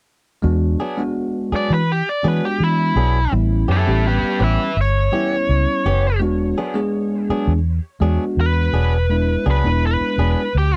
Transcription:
0.42 0.75 E2 medium
0.42 0.78 G#3 medium
0.42 0.79 B3 medium
0.42 0.79 D4 medium
0.42 0.79 F#4 medium
0.80 1.03 F#3 medium
0.80 1.02 B3 medium
0.80 1.02 D4 medium
0.80 1.02 G#4 medium
0.97 1.79 G#3 medium
0.97 1.80 B3 medium
0.97 1.80 D4 medium
0.97 1.80 F#4 medium
1.52 1.75 F#3 soft
1.52 1.75 B3 medium
1.52 1.75 D4 medium
1.52 1.74 G#4 medium
1.52 1.72 D5 medium
1.52 muted fingered electric bass stroke soft
1.70 2.01 E3 medium
1.70 1.90 B4 medium
1.92 2.08 G4 medium
2.09 2.28 D5 medium
2.23 2.40 E3 medium
2.23 2.47 F#3 medium
2.23 2.94 G#3 medium
2.23 2.94 B3 medium
2.23 2.47 B3 medium
2.23 2.95 D4 medium
2.23 2.47 D4 medium
2.23 2.95 F#4 medium
2.23 2.46 G#4 medium
2.28 2.44 B4 medium
2.45 2.61 G4 medium
2.60 2.91 E3 medium
2.60 3.32 E4 medium
2.96 3.27 B1 medium
2.96 3.19 F#3 medium
2.96 3.19 B3 medium
2.96 3.19 D4 medium
2.96 3.18 G#4 medium
3.31 3.63 A1 medium
3.31 3.67 G3 medium
3.31 3.67 B3 medium
3.31 3.68 C#4 medium
3.31 3.68 E4 medium
3.68 3.84 F#2 medium
3.68 3.91 E3 soft
3.68 3.91 B3 medium
3.68 3.91 C#4 medium
3.68 4.06 E4 medium
3.68 3.90 G4 medium
3.68 4.06 A4 medium
3.86 4.18 A1 medium
3.86 4.68 G3 medium
3.86 4.69 B3 medium
3.86 4.69 C#4 medium
3.86 4.69 G4 medium
4.07 4.40 G4 medium
4.07 4.42 B4 medium
4.23 muted fingered electric bass stroke soft
4.40 4.56 A1 medium
4.40 4.63 E3 medium
4.40 4.63 B3 medium
4.40 4.62 C#4 medium
4.40 4.62 G4 medium
4.40 4.76 B4 medium
4.40 4.78 E5 medium
4.77 5.08 G1 medium
4.81 6.20 C#5 medium
5.12 5.36 E3 soft
5.12 5.83 G3 medium
5.12 5.83 B3 medium
5.12 5.36 B3 medium
5.12 5.83 C#4 medium
5.12 5.35 C#4 medium
5.12 5.84 E4 medium
5.12 5.35 G4 medium
5.49 5.65 C#2 medium
5.85 6.21 F#1 medium
5.85 6.09 E3 medium
5.85 6.08 B3 medium
5.85 6.08 C#4 medium
5.85 6.08 G4 medium
6.20 6.52 E1 medium
6.20 6.56 G#3 medium
6.20 6.56 B3 medium
6.20 6.57 D4 medium
6.20 6.57 F#4 medium
6.58 6.80 F#3 medium
6.58 6.80 B3 medium
6.58 6.80 D4 medium
6.58 6.80 G#4 medium
6.74 7.57 G#3 medium
6.74 7.57 B3 medium
6.74 7.57 D4 medium
6.74 7.57 G#4 medium
7.30 7.53 F#3 medium
7.30 7.53 B3 medium
7.30 7.52 D4 medium
7.30 7.52 G#4 medium
7.30 muted fingered electric bass stroke soft
7.47 7.79 E2 medium
8.00 8.17 E2 medium
8.00 8.25 F#3 medium
8.00 8.71 G#3 medium
8.00 8.72 B3 medium
8.00 8.24 B3 medium
8.00 8.72 D4 medium
8.00 8.24 D4 medium
8.00 8.72 F#4 medium
8.00 8.24 G#4 medium
8.37 8.68 E2 medium
8.37 9.45 B4 medium
8.73 9.35 E1 medium
8.73 8.97 F#3 medium
8.73 8.97 B3 medium
8.73 8.96 D4 medium
8.73 8.96 G#4 medium
9.10 9.45 G#3 medium
9.10 9.45 B3 medium
9.10 9.46 D4 medium
9.10 9.46 E4 medium
9.46 9.62 C#2 medium
9.46 9.69 F#3 medium
9.46 9.69 B3 medium
9.46 9.68 D4 medium
9.46 9.68 G#4 medium
9.51 9.84 B4 medium
9.64 9.95 E1 medium
9.64 10.46 G#3 medium
9.64 10.46 B3 medium
9.64 10.47 D4 medium
9.64 10.47 E4 medium
9.87 10.55 B4 medium
10.01 muted fingered electric bass stroke soft
10.18 10.34 E1 medium
10.18 10.42 F#3 soft
10.18 10.41 B3 medium
10.18 10.41 D4 medium
10.18 10.41 G#4 medium
10.55 10.77 D2 loud
10.55 10.75 G4 medium

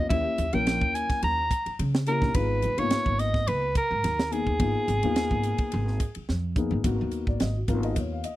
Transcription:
0.09 0.25 D#2 loud
0.09 0.42 A#3 medium
0.09 0.43 C#4 medium
0.09 0.43 E4 medium
0.09 0.43 G4 medium
0.09 0.55 E5 medium
0.09 kick loud
0.09 ride medium
0.38 0.53 D#2 medium
0.38 hi-hat pedal medium
0.38 ride medium
0.53 0.80 A#1 medium
0.53 1.38 A#3 medium
0.53 1.38 C#4 medium
0.53 1.38 E4 medium
0.53 1.39 A#4 medium
0.53 0.96 G5 loud
0.53 ride medium
0.67 snare medium
0.67 ride medium
0.82 1.08 D#2 medium
0.82 kick medium
0.95 1.23 G#5 medium
0.95 hi-hat pedal medium
0.95 ride medium
1.10 muted upright bass stroke soft
1.10 kick medium
1.10 snare soft
1.10 ride medium
1.23 1.49 D#2 medium
1.23 1.77 A#5 loud
1.23 ride medium
1.51 kick medium
1.51 hi-hat pedal medium
1.51 ride medium
1.66 muted upright bass stroke soft
1.66 ride medium
1.79 2.19 C#3 medium
1.79 ride medium
1.95 snare loud
2.06 2.29 A#3 medium
2.06 2.29 C#4 medium
2.06 2.29 E4 medium
2.06 2.30 G4 medium
2.06 2.36 A#4 loud
2.06 hi-hat pedal medium
2.06 ride medium
2.22 2.34 A#1 medium
2.22 kick medium
2.22 snare soft
2.34 2.65 G#1 medium
2.34 2.67 G#3 medium
2.34 2.67 B3 medium
2.34 2.68 D#4 medium
2.34 2.68 F4 medium
2.34 2.80 B4 medium
2.34 kick loud
2.34 ride medium
2.62 2.77 D#2 medium
2.62 hi-hat pedal medium
2.62 ride medium
2.77 2.90 G#2 medium
2.77 3.62 A#3 medium
2.77 3.63 B3 medium
2.77 3.63 D#4 medium
2.77 3.63 F4 medium
2.77 3.21 C#5 medium
2.77 ride medium
2.90 muted upright bass stroke soft
2.90 snare loud
2.90 ride medium
3.06 3.44 G#1 medium
3.06 kick medium
3.19 3.49 D#5 medium
3.19 snare soft
3.19 hi-hat pedal medium
3.19 ride medium
3.34 kick medium
3.34 snare soft
3.47 3.74 C#2 medium
3.47 3.76 B4 loud
3.47 ride medium
3.75 4.33 A#4 medium
3.75 muted upright bass stroke soft
3.75 kick medium
3.75 hi-hat pedal medium
3.75 ride medium
3.91 4.03 G#2 medium
4.04 4.44 D#2 medium
4.04 snare soft
4.04 ride medium
4.19 snare loud
4.31 4.53 A#3 medium
4.31 4.53 B3 medium
4.31 4.54 D#4 medium
4.31 6.29 G#4 medium
4.31 4.54 G#4 medium
4.31 hi-hat pedal medium
4.31 ride medium
4.47 4.59 D#2 medium
4.47 kick medium
4.59 4.74 G#1 loud
4.59 4.92 A#3 medium
4.59 4.92 B3 medium
4.59 4.92 D#4 medium
4.59 4.93 F4 medium
4.59 kick loud
4.59 ride medium
4.88 5.02 G#1 medium
4.88 hi-hat pedal medium
4.88 ride medium
5.03 5.29 D#2 medium
5.03 5.88 A#3 medium
5.03 5.88 B3 medium
5.03 5.88 D#4 medium
5.03 5.88 F4 medium
5.03 ride medium
5.16 snare loud
5.16 ride medium
5.31 5.57 G#1 medium
5.31 kick medium
5.43 hi-hat pedal medium
5.43 ride medium
5.58 muted upright bass stroke soft
5.58 kick medium
5.58 ride medium
5.72 5.99 G#1 medium
5.72 ride medium
5.87 snare soft
6.00 kick medium
6.00 hi-hat pedal medium
6.00 ride medium
6.15 muted upright bass stroke soft
6.15 ride medium
6.29 6.69 F2 medium
6.29 snare medium
6.56 6.78 A#3 medium
6.56 6.78 B3 medium
6.56 6.78 D#4 medium
6.56 6.79 G#4 medium
6.56 kick medium
6.56 hi-hat pedal medium
6.71 6.84 G#1 medium
6.71 floor tom medium
6.84 6.98 G#1 medium
6.84 7.48 A#3 medium
6.84 7.48 B3 medium
6.84 7.48 D#4 medium
6.84 7.49 F#4 medium
6.84 kick loud
6.84 hi-hat pedal medium
6.84 ride medium
7.01 7.26 D#2 medium
7.11 hi-hat pedal medium
7.11 ride medium
7.27 7.39 G#1 medium
7.27 7.41 D5 medium
7.27 kick medium
7.40 7.67 G#1 medium
7.40 7.56 D#5 medium
7.40 snare loud
7.40 hi-hat pedal medium
7.40 ride medium
7.57 7.69 F#4 soft
7.68 7.94 G#1 medium
7.68 8.22 A#3 medium
7.68 8.22 B3 medium
7.68 8.22 D#4 medium
7.68 8.22 F4 medium
7.68 7.83 A#4 medium
7.68 kick medium
7.68 hi-hat pedal medium
7.68 ride medium
7.83 7.97 D#5 medium
7.83 ride medium
7.96 8.23 D#2 medium
7.96 8.12 C#5 medium
7.96 kick medium
7.96 hi-hat pedal medium
7.96 ride medium
8.12 8.25 F5 medium
8.24 8.36 D#5 medium
8.24 hi-hat pedal medium
8.24 ride medium

